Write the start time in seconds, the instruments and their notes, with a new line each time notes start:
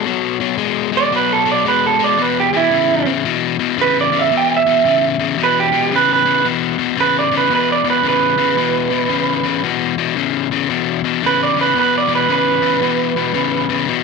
0.06 overdriven electric guitar B2 F#3
0.40 overdriven electric guitar B2 F#3
0.58 overdriven electric guitar B2 G#3
0.92 overdriven electric guitar B2 G#3
0.97 clean electric guitar D5
1.12 overdriven electric guitar B2 F#3, clean electric guitar B4
1.33 clean electric guitar A4
1.45 overdriven electric guitar B2 F#3
1.52 clean electric guitar D5
1.65 overdriven electric guitar B2 G#3, clean electric guitar B4
1.86 clean electric guitar A4
1.99 overdriven electric guitar B2 G#3
2.04 clean electric guitar D5
2.18 overdriven electric guitar E2 B2
2.22 clean electric guitar B4
2.40 clean electric guitar G4
2.53 overdriven electric guitar E2 B2, clean electric guitar E4
2.71 overdriven electric guitar E2 C#3
3.06 overdriven electric guitar E2 C#3
3.25 overdriven electric guitar E2 B2
3.59 overdriven electric guitar E2 B2
3.77 overdriven electric guitar E2 C#3
3.81 clean electric guitar B4
4.01 clean electric guitar D5
4.12 overdriven electric guitar E2 C#3
4.19 clean electric guitar E5
4.31 overdriven electric guitar E2 B2
4.37 clean electric guitar G5
4.56 clean electric guitar E5
4.66 overdriven electric guitar E2 B2
4.85 overdriven electric guitar E2 C#3
5.19 overdriven electric guitar E2 C#3
5.38 overdriven electric guitar E2 B2
5.44 clean electric guitar B4
5.60 clean electric guitar G4
5.72 overdriven electric guitar E2 B2
5.91 overdriven electric guitar E2 C#3
5.96 clean electric guitar B4
6.13 clean electric guitar B4
6.25 overdriven electric guitar E2 C#3
6.44 overdriven electric guitar E2 B2
6.78 overdriven electric guitar E2 B2
6.97 overdriven electric guitar E2 C#3, clean electric guitar B4
7.19 clean electric guitar D5
7.31 overdriven electric guitar E2 C#3
7.37 clean electric guitar B4
7.50 overdriven electric guitar E2 B2
7.55 clean electric guitar B4
7.72 clean electric guitar D5
7.84 overdriven electric guitar E2 B2
7.90 clean electric guitar B4
8.03 overdriven electric guitar E2 C#3
8.08 clean electric guitar B4
8.38 overdriven electric guitar E2 C#3
8.57 overdriven electric guitar E2 B2
8.90 overdriven electric guitar E2 B2
9.09 overdriven electric guitar E2 C#3
9.43 overdriven electric guitar E2 C#3
9.64 overdriven electric guitar E2 B2
9.98 overdriven electric guitar E2 B2
10.16 overdriven electric guitar E2 C#3
10.51 overdriven electric guitar E2 C#3
10.70 overdriven electric guitar E2 B2
11.04 overdriven electric guitar E2 B2
11.23 overdriven electric guitar E2 C#3, clean electric guitar B4
11.43 clean electric guitar D5
11.56 overdriven electric guitar E2 C#3
11.61 clean electric guitar B4
11.75 overdriven electric guitar E2 B2
11.79 clean electric guitar B4
11.98 clean electric guitar D5
12.09 overdriven electric guitar E2 B2
12.15 clean electric guitar B4
12.29 overdriven electric guitar E2 C#3, clean electric guitar B4
12.62 overdriven electric guitar E2 C#3
12.82 overdriven electric guitar E2 B2
13.16 overdriven electric guitar E2 B2
13.34 overdriven electric guitar E2 C#3
13.69 overdriven electric guitar E2 C#3
13.87 overdriven electric guitar E2 B2